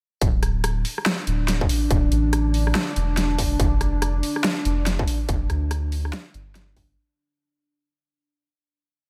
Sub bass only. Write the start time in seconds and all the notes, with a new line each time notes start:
0.22 D1
1.27 D1
1.90 D1
2.12 A1
2.96 E1
3.60 F1
4.65 F1
5.29 F1
5.50 D2
6.34 G1
6.77 G1